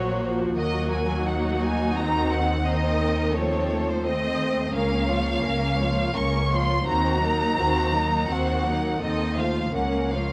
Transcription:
Already playing: double bass section A#1, cello section A#2, viola section F#3 A#3, violin section F#4 C5 C#5
0.25 viola section F3
0.56 double bass section D#2, cello section D#2, viola section F#3 A#3, violin section F#4 A#4 D#5
0.91 violin section G#5
1.24 violin section D#4 F#4 F#5
1.61 violin section G#5
1.95 viola section D#3 C4, violin section A#5
2.30 violin section F#5
2.63 viola section D#3 C4, violin section D#4 C5 D#5
2.98 violin section A#4
3.32 viola section F3 A3, violin section C4 A4 C#5
3.89 violin section C5
4.04 viola section A3 C4, violin section C4 C5 D#5
4.73 double bass section C#2, cello section C#2, viola section A#3 C#4, violin section C#4 A#4 F5
5.08 viola section F3 A#3, violin section F4 C#5
5.44 double bass section C#2, cello section C#2, viola section A#3 C#4, violin section C#4 A#4
5.79 viola section F3 A#3, violin section F4 C#5
6.15 double bass section C#2, cello section C#2, viola section A#3 C#4, violin section C#4 A#4 C#6
6.51 viola section F3 A#3, violin section F4 C#5 C6
6.86 cello section D#2, double bass section D#2, viola section D#3 C4, violin section F#4 C5 A#5
7.21 viola section F#3 A#3, violin section D#4 A#4
7.57 cello section D#2, double bass section D#2, viola section D#3 C4, violin section F#4 C5
7.93 viola section F#3 A#3, violin section D#4 A#4
8.29 double bass section D#2, cello section D#2, viola section D#3 C4, violin section F#4 C5 F#5
8.65 viola section F#3 A#3, violin section D#4 A#4
9.01 double bass section D#2, cello section D#2, viola section D#3 C4, violin section D#4 A4 D#5
9.36 viola section F3 A3, violin section F4 C5 F5
9.73 double bass section C#2, cello section C#2, viola section A#3 C#4, violin section C#4 A#4 F#5
10.11 viola section F3 A#3, violin section F4 C#5 F5

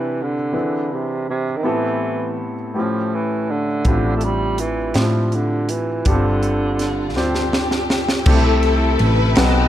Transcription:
Already playing: grand piano C3 C4 D4 E4 G4 B4, tenor saxophone E3
0.22 tenor saxophone D3
0.52 grand piano E3 C4 D4 E4 G#4 B4
0.93 tenor saxophone C3
1.30 tenor saxophone C3
1.57 tenor saxophone D#3
1.63 grand piano A2 B3 C4 E4 G4 A4, tenor saxophone E3
2.74 grand piano A2 A3 B3 E4 G4 A4, tenor saxophone F3
2.81 grand piano C#4
3.14 tenor saxophone E3
3.51 tenor saxophone D3
3.85 fingered electric bass A1, grand piano A2 C4 D4 E4 F4 G4, kick, closed hi-hat
4.17 tenor saxophone A3
4.21 tenor saxophone G3, closed hi-hat
4.58 tenor saxophone E3, closed hi-hat
4.94 fingered electric bass A2, tenor saxophone F3, grand piano C4 D4 E4 F4 G4, snare, closed hi-hat
5.32 tenor saxophone D3, closed hi-hat
5.69 tenor saxophone E3, closed hi-hat
6.05 fingered electric bass G1, grand piano G2 B3 D4 F4 G4 A4, tenor saxophone D3, kick, closed hi-hat
6.12 grand piano C4
6.43 closed hi-hat
6.79 string section F4, snare, closed hi-hat
7.16 fingered electric bass D2, grand piano C4 D4 F4 G4 C5, string section C4 D4 G4, snare
7.35 snare
7.53 snare
7.71 snare
7.90 snare
8.09 snare
8.26 fingered electric bass C2, grand piano C3 A3 C4 D4 G4 A4, string section E4 A4, tonewheel organ A4 E5 G5, kick, crash
8.34 grand piano E4
8.63 string section A4, ride
8.99 fingered electric bass A1, string section B4, ride
9.35 fingered electric bass B1, grand piano B2 C4 D#4 A4 B4 F#5, string section C4 D#4 G4, tonewheel organ B4 D#5 A5, snare, ride

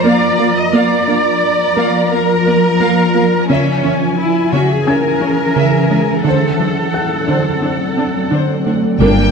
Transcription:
Already playing: ambient pad F3 F4 A#4 D5, violin section A#5
0.04 synth arpeggio sound A#3, viola section A#3, cello section D5, violin section F5
0.38 viola section A#3, synth arpeggio sound F4, violin section F5
0.58 cello section D#5
0.73 ambient pad F3 F4 A#4 D5, synth arpeggio sound A#3, viola section A#3, cello section D5, violin section F5 A#5
1.08 viola section A#3, synth arpeggio sound D4, violin section F5
1.76 viola section A#3, synth arpeggio sound A#3, violin section F5
2.11 viola section A#3, synth arpeggio sound A#4, cello section A#4, violin section F5
2.46 viola section A#3, synth arpeggio sound A#4, violin section D5
2.80 viola section A#3, synth arpeggio sound A#3, violin section F5
3.15 viola section A#3, synth arpeggio sound F4, violin section F5
3.50 synth arpeggio sound C#3, ambient pad E3 C#4 G#4 E5, viola section C#4, cello section C#4, violin section E5 G#5
3.84 synth arpeggio sound E3, viola section C#4, violin section E5
4.19 cello section E4
4.53 synth arpeggio sound C#3, viola section C#4, cello section F#4, violin section E5
4.71 cello section G#4
4.87 viola section C#4, synth arpeggio sound C#4, cello section A#4, violin section E5, grand piano G#5 G#6
5.21 viola section C#4, synth arpeggio sound C#4, violin section C#5
5.56 synth arpeggio sound C#3, viola section C#4, violin section E5
5.90 synth arpeggio sound G#3, viola section C#4, violin section E5
6.25 synth arpeggio sound D3, ambient pad F#3 C4 A4 D5, viola section D4, cello section A4, violin section C5 F#5
6.59 synth arpeggio sound F#3, viola section D4, violin section C5
6.94 grand piano F#5 F#6
7.28 synth arpeggio sound D3, viola section D4, violin section C5
7.62 synth arpeggio sound C4, viola section D4, violin section C5
7.97 synth arpeggio sound C4, viola section D4, violin section A4
8.32 synth arpeggio sound D3, viola section D4, violin section C5
8.66 synth arpeggio sound A3, viola section D4, violin section C5
9.01 double bass section G1, tuba G1, sub bass G1, cello section G2, synth arpeggio sound G3, viola section A#3 D4, french horn section A#3 D4, violin section G4 A#4 G5

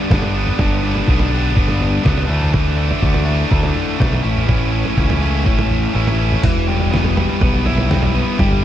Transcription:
Already playing: distorted electric guitar G2 B3 D4
0.10 picked electric bass G1, distorted electric guitar D3 G3 B3 D4, kick, snare
0.22 floor tom
0.35 distorted electric guitar G3 B3 D4
0.47 mid tom
0.58 picked electric bass G1, distorted electric guitar G2 D3 G3 B3 D4, kick, floor tom
0.83 distorted electric guitar G3 B3 D4
0.95 floor tom
1.08 picked electric bass B1, distorted electric guitar D3 G3 B3 D4, kick
1.19 floor tom
1.31 distorted electric guitar G3 B3 D4
1.55 picked electric bass G1, distorted electric guitar G2 D3 G3 B3 D4, kick
1.68 floor tom
1.80 mid tom
2.04 picked electric bass C#2, distorted electric guitar D3 G3 B3 D4, kick, snare
2.17 floor tom
2.27 picked electric bass D2, distorted electric guitar D3 E3 A3 D4
2.42 mid tom
2.53 distorted electric guitar D3 E3 A3 D4, kick, floor tom
2.77 distorted electric guitar E3 A3 D4
2.91 floor tom
3.01 picked electric bass D2, distorted electric guitar D3 E3 A3 D4, kick
3.14 floor tom
3.25 distorted electric guitar E3 A3 D4
3.49 picked electric bass D2, distorted electric guitar D3 E3 A3 D4, kick
3.63 floor tom
3.75 mid tom
3.98 picked electric bass B1, distorted electric guitar D3 E3 A3 D4, kick, snare
4.13 floor tom
4.23 picked electric bass A1, distorted electric guitar A2 E3 A3 C#4 E4
4.37 mid tom
4.47 distorted electric guitar A2 E3 A3 C#4 E4, kick, floor tom
4.72 distorted electric guitar A3 C#4 E4
4.85 floor tom
4.95 picked electric bass C#2, distorted electric guitar E3 A3 C#4 E4, kick
5.10 floor tom, mid tom
5.20 distorted electric guitar A3 C#4 E4
5.44 picked electric bass A1, distorted electric guitar A2 E3 A3 C#4 E4, kick
5.59 floor tom
5.71 mid tom
5.93 picked electric bass A1, distorted electric guitar E3 A3 C#4 E4
6.07 floor tom
6.18 distorted electric guitar A3 C#4 E4
6.32 mid tom
6.43 picked electric bass E1, distorted electric guitar E3, kick, floor tom, crash
6.56 mid tom
6.67 distorted electric guitar G3
6.80 floor tom
6.92 distorted electric guitar B3, snare
7.04 floor tom
7.17 distorted electric guitar G3, floor tom
7.29 mid tom
7.41 picked electric bass B1, distorted electric guitar B3, kick, floor tom
7.66 distorted electric guitar E4, floor tom
7.78 floor tom
7.90 distorted electric guitar G3, snare, mid tom
8.03 floor tom
8.15 distorted electric guitar B3
8.39 picked electric bass G1, distorted electric guitar G3, kick, floor tom
8.51 mid tom

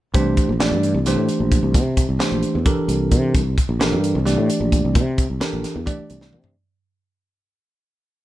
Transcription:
0.14 fretless electric bass C2, tine electric piano E3 A3 D4 G4 C5, kick, closed hi-hat
0.37 kick, closed hi-hat
0.49 fretless electric bass A#1
0.60 tine electric piano E3 A3 D4 G4 D5, snare, closed hi-hat
0.71 fretless electric bass G2
0.83 closed hi-hat
0.94 fretless electric bass C2
1.06 tine electric piano E3 A3 D4 G4 C5, snare, closed hi-hat
1.17 fretless electric bass A2
1.29 closed hi-hat
1.40 fretless electric bass A#1
1.52 kick, closed hi-hat
1.63 fretless electric bass C2
1.74 fretless electric bass C3, kick, closed hi-hat
1.97 kick, closed hi-hat
2.09 fretless electric bass C2
2.19 tine electric piano E3 A3 D4 G4 C5, snare, closed hi-hat
2.32 fretless electric bass A#1
2.43 closed hi-hat
2.55 fretless electric bass E2
2.66 tine electric piano E3 D4 G4 A4 A#4, kick, closed hi-hat
2.78 muted fretless electric bass stroke
2.88 fretless electric bass C2, closed hi-hat
3.11 fretless electric bass C3, kick, closed hi-hat
3.35 fretless electric bass C2, kick, closed hi-hat
3.58 kick, closed hi-hat
3.69 fretless electric bass A#1
3.80 tine electric piano E3 D4 G4 A4 A#4, snare, closed hi-hat
3.92 fretless electric bass G2
4.04 closed hi-hat
4.15 fretless electric bass C2
4.25 tine electric piano E3 A3 D4 G4 D5, snare, closed hi-hat
4.38 fretless electric bass A2
4.50 closed hi-hat
4.61 fretless electric bass A#1
4.72 kick, closed hi-hat
4.85 fretless electric bass C2
4.95 fretless electric bass C3, kick, closed hi-hat
5.18 kick, closed hi-hat
5.30 fretless electric bass C2
5.40 tine electric piano E3 D4 G4 A4 A#4, snare, closed hi-hat
5.53 fretless electric bass A#1
5.64 snare, closed hi-hat
5.76 fretless electric bass E2
5.86 tine electric piano E3 A3 D4 G4 D5, kick, closed hi-hat
5.99 muted fretless electric bass stroke
6.10 fretless electric bass C2, closed hi-hat
6.21 snare
6.33 fretless electric bass C3, mid tom
6.44 floor tom

